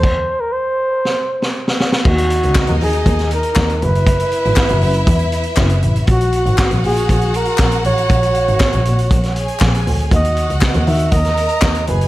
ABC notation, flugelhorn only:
X:1
M:4/4
L:1/16
Q:1/4=119
K:Cdor
V:1 name="Flugelhorn"
c3 B c8 z4 | [K:D#phr] F6 G4 A4 B2- | B12- B2 z2 | F4 F2 G4 A4 c2- |
c12- c2 z2 | d4 z2 e2 d6 B2 |]